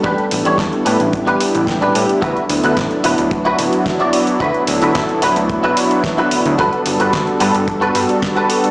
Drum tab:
HH |xxoxxxoxxxoxxxox|xxoxxxoxxxoxxxox|xxoxxxoxxxoxxxox|xxoxxxoxxxoxxxox|
SD |----o-------o---|----o-------o---|----o-------o---|----o-------o---|
BD |o---o---o---o---|o---o---o---o---|o---o---o---o---|o---o---o---o---|